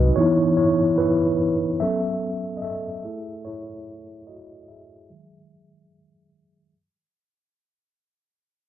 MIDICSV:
0, 0, Header, 1, 3, 480
1, 0, Start_track
1, 0, Key_signature, 4, "major"
1, 0, Tempo, 821918
1, 94, Time_signature, 4, 2, 24, 8
1, 5073, End_track
2, 0, Start_track
2, 0, Title_t, "Tine electric piano"
2, 0, Program_c, 0, 4
2, 0, Control_c, 0, 64, 127
2, 0, Note_on_c, 0, 54, 52
2, 0, Note_on_c, 0, 56, 44
2, 0, Note_on_c, 0, 63, 62
2, 0, Note_on_c, 0, 66, 63
2, 0, Note_on_c, 0, 71, 77
2, 0, Note_on_c, 0, 75, 86
2, 76, Note_off_c, 0, 71, 0
2, 83, Note_off_c, 0, 63, 0
2, 91, Note_on_c, 0, 73, 94
2, 96, Note_on_c, 0, 52, 55
2, 100, Note_on_c, 0, 59, 50
2, 101, Note_off_c, 0, 66, 0
2, 101, Control_c, 0, 64, 0
2, 103, Note_off_c, 0, 54, 0
2, 104, Note_on_c, 0, 63, 62
2, 105, Note_off_c, 0, 56, 0
2, 105, Note_on_c, 0, 64, 75
2, 106, Note_off_c, 0, 75, 0
2, 213, Control_c, 0, 64, 127
2, 323, Note_off_c, 0, 64, 0
2, 324, Note_off_c, 0, 73, 0
2, 331, Note_on_c, 0, 73, 82
2, 344, Note_on_c, 0, 64, 60
2, 437, Note_off_c, 0, 52, 0
2, 439, Note_off_c, 0, 59, 0
2, 441, Note_off_c, 0, 63, 0
2, 556, Note_off_c, 0, 73, 0
2, 563, Note_off_c, 0, 64, 0
2, 571, Note_on_c, 0, 71, 90
2, 584, Note_on_c, 0, 64, 66
2, 1029, Note_off_c, 0, 71, 0
2, 1036, Note_off_c, 0, 64, 0
2, 1051, Note_on_c, 0, 76, 100
2, 1055, Note_on_c, 0, 54, 52
2, 1059, Note_on_c, 0, 59, 46
2, 1062, Note_on_c, 0, 61, 54
2, 1063, Control_c, 0, 64, 0
2, 1063, Note_on_c, 0, 69, 76
2, 1167, Control_c, 0, 64, 127
2, 1485, Note_off_c, 0, 69, 0
2, 1501, Note_on_c, 0, 75, 73
2, 1516, Note_off_c, 0, 76, 0
2, 1530, Note_on_c, 0, 76, 88
2, 1533, Note_off_c, 0, 75, 0
2, 1542, Note_on_c, 0, 69, 70
2, 1751, Note_off_c, 0, 54, 0
2, 1753, Note_off_c, 0, 59, 0
2, 1755, Note_off_c, 0, 61, 0
2, 1774, Note_on_c, 0, 68, 49
2, 1779, Note_on_c, 0, 57, 46
2, 1782, Control_c, 0, 64, 0
2, 1782, Note_on_c, 0, 64, 58
2, 1875, Control_c, 0, 64, 127
2, 1995, Note_off_c, 0, 69, 0
2, 2014, Note_on_c, 0, 73, 96
2, 2019, Note_off_c, 0, 64, 0
2, 2026, Note_on_c, 0, 64, 71
2, 2027, Note_off_c, 0, 76, 0
2, 2116, Note_off_c, 0, 68, 0
2, 2119, Note_off_c, 0, 57, 0
2, 2477, Note_off_c, 0, 64, 0
2, 2494, Note_on_c, 0, 75, 88
2, 2505, Note_on_c, 0, 66, 69
2, 2508, Note_off_c, 0, 73, 0
2, 2694, Note_off_c, 0, 75, 0
2, 2695, Note_off_c, 0, 66, 0
2, 2701, Note_on_c, 0, 75, 63
2, 2733, Note_off_c, 0, 75, 0
2, 2735, Note_on_c, 0, 76, 79
2, 2746, Note_on_c, 0, 68, 59
2, 2979, Note_on_c, 0, 54, 46
2, 2982, Control_c, 0, 64, 0
2, 2982, Note_on_c, 0, 56, 44
2, 2986, Note_on_c, 0, 51, 55
2, 3090, Control_c, 0, 64, 127
2, 3431, Note_off_c, 0, 76, 0
2, 3437, Note_off_c, 0, 68, 0
2, 3913, Note_off_c, 0, 54, 0
2, 3915, Note_off_c, 0, 56, 0
2, 3917, Note_off_c, 0, 51, 0
2, 3941, Control_c, 0, 64, 0
2, 5073, End_track
3, 0, Start_track
3, 0, Title_t, "Fingered electric bass"
3, 0, Program_c, 1, 33
3, 0, Note_on_c, 1, 36, 73
3, 61, Note_off_c, 1, 36, 0
3, 5073, End_track
0, 0, End_of_file